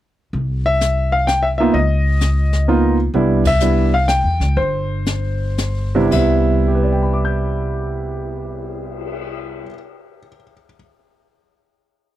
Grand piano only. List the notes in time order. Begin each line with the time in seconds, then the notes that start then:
0.66 E5
1.12 F5
1.27 G5
1.43 E5
1.58 A#3 B3 D#4 F4 E5
1.74 D#5
2.68 A#3 B3 D#4 F4
3.14 G3 B3 D4 E4
3.47 E5
3.61 G3 B3 D4 E4
3.94 F5
4.08 G5
4.57 C5
5.95 C3 G3 B3 D4 E4
6.07 C3 G3
6.13 B3 E5
6.19 E4
6.68 G4
6.75 B4
6.83 D5
6.92 G5
7.03 B5
7.13 D6
7.25 G6